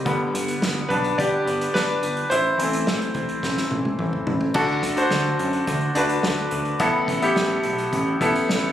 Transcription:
0.05 0.29 G1 medium
0.05 0.86 D3 soft
0.05 0.86 G3 soft
0.05 0.86 B3 medium
0.05 kick medium
0.05 closed hi-hat medium
0.34 0.57 G1 loud
0.34 closed hi-hat medium
0.48 closed hi-hat medium
0.62 0.85 G1 loud
0.62 snare loud
0.89 1.13 B1 medium
0.89 1.17 D4 medium
0.89 1.15 B4 medium
0.89 kick medium
0.89 closed hi-hat soft
1.04 closed hi-hat soft
1.18 1.42 G1 loud
1.18 1.71 G4 medium
1.18 1.76 D5 medium
1.18 kick medium
1.18 closed hi-hat medium
1.46 1.69 G1 medium
1.46 closed hi-hat medium
1.61 closed hi-hat soft
1.74 1.98 G1 medium
1.74 2.27 D4 medium
1.74 2.26 B4 medium
1.74 snare medium
1.89 closed hi-hat soft
2.03 2.26 G1 medium
2.03 closed hi-hat medium
2.17 closed hi-hat soft
2.30 2.54 A1 loud
2.30 3.96 E4 medium
2.30 3.95 C5 medium
2.30 closed hi-hat medium
2.58 2.82 A1 medium
2.58 4.51 E3 medium
2.58 4.51 A3 soft
2.58 4.52 C4 medium
2.58 closed hi-hat medium
2.73 closed hi-hat medium
2.87 3.10 A1 loud
2.87 snare loud
3.02 closed hi-hat soft
3.14 3.38 C2 medium
3.14 kick medium
3.14 closed hi-hat soft
3.29 closed hi-hat soft
3.43 3.66 A1 medium
3.43 kick medium
3.43 snare soft
3.57 snare soft
3.71 3.94 A1 medium
3.71 high tom medium
3.85 high tom medium
3.99 4.22 A1 medium
3.99 mid tom medium
4.13 mid tom medium
4.27 4.50 A1 medium
4.27 floor tom medium
4.41 floor tom medium
4.54 4.78 D2 loud
4.54 5.36 D3 medium
4.54 4.95 D4 medium
4.54 4.95 F#4 medium
4.54 4.95 A4 medium
4.54 kick medium
4.54 crash medium
4.68 closed hi-hat soft
4.83 5.06 D2 loud
4.83 kick medium
4.83 closed hi-hat medium
4.96 5.89 D4 medium
4.96 5.90 F#4 medium
4.96 5.90 C5 medium
4.96 closed hi-hat medium
5.11 5.35 D2 medium
5.11 snare loud
5.39 5.63 F#2 medium
5.39 closed hi-hat medium
5.53 closed hi-hat soft
5.67 5.91 D2 loud
5.67 kick medium
5.67 closed hi-hat medium
5.81 closed hi-hat soft
5.95 6.19 D2 medium
5.95 6.75 D4 medium
5.95 6.75 F#4 medium
5.95 6.76 B4 medium
5.95 closed hi-hat medium
6.09 closed hi-hat soft
6.23 6.47 D2 medium
6.23 snare medium
6.51 6.75 D2 medium
6.51 closed hi-hat medium
6.65 closed hi-hat soft
6.80 7.03 A1 loud
6.80 7.61 A2 medium
6.80 7.20 B3 medium
6.80 7.20 E4 medium
6.80 7.20 A4 medium
6.80 kick loud
6.80 closed hi-hat medium
7.08 7.31 A1 loud
7.08 kick loud
7.08 closed hi-hat medium
7.22 8.15 B3 medium
7.22 8.15 E4 medium
7.22 8.15 G4 medium
7.22 closed hi-hat medium
7.36 7.60 A1 loud
7.36 snare loud
7.63 7.88 B1 medium
7.63 closed hi-hat medium
7.78 closed hi-hat soft
7.93 8.16 A1 loud
7.93 kick medium
7.93 closed hi-hat medium
8.21 8.44 A1 medium
8.21 8.72 B3 medium
8.21 8.72 E4 medium
8.21 8.72 A4 medium
8.21 kick medium
8.21 closed hi-hat medium
8.35 closed hi-hat soft
8.49 8.72 A1 loud
8.49 snare medium

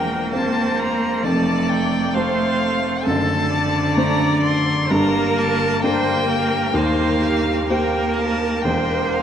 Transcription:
0.00 1.20 E1 medium
0.00 1.20 E2 medium
0.00 1.25 A#3 medium
0.00 0.32 A#4 medium
0.00 0.33 G5 loud
0.32 1.20 A#3 medium
0.32 1.20 C4 medium
0.32 1.25 C5 medium
0.32 1.20 C5 medium
0.32 0.80 A5 loud
0.79 1.24 A#5 loud
1.24 3.01 F1 medium
1.24 3.01 F2 medium
1.24 2.14 A3 medium
1.24 2.15 D5 loud
1.24 1.71 A5 loud
1.70 2.16 G5 loud
2.14 3.08 A3 medium
2.14 3.02 A3 medium
2.14 3.02 C4 medium
2.14 3.04 C5 loud
2.14 3.03 C5 medium
2.14 3.06 F5 loud
3.05 4.86 F#1 medium
3.05 4.86 F#2 medium
3.05 4.91 D3 medium
3.05 3.52 A4 medium
3.05 3.97 A5 loud
3.50 4.91 D5 loud
3.95 4.85 A3 medium
3.95 4.86 D4 medium
3.95 4.86 C5 medium
3.95 4.42 A#5 loud
4.43 4.92 C6 loud
4.89 6.73 G1 medium
4.89 6.73 G2 medium
4.89 5.82 A#3 medium
4.89 5.85 A#4 loud
4.89 5.40 A#5 loud
5.38 5.83 A5 loud
5.82 6.73 A#3 medium
5.82 6.72 A#3 medium
5.82 6.72 D4 medium
5.82 6.73 A#4 medium
5.82 6.28 C5 loud
5.82 6.77 G5 loud
6.28 6.77 A#4 medium
6.74 8.60 D#2 medium
6.74 8.60 D#3 medium
6.74 7.65 A#3 medium
6.74 7.23 C5 loud
6.74 7.72 F5 loud
7.21 7.68 G4 medium
7.68 8.63 A#3 medium
7.68 8.61 A#3 medium
7.68 8.62 G4 medium
7.68 8.67 A#4 loud
7.68 8.62 C5 medium
7.68 8.15 G5 loud
8.16 8.64 A5 loud
8.62 9.22 E1 medium
8.62 9.22 E2 medium
8.62 9.22 A#3 medium
8.62 9.22 C5 loud
8.62 9.15 G5 loud
9.13 9.22 F5 loud

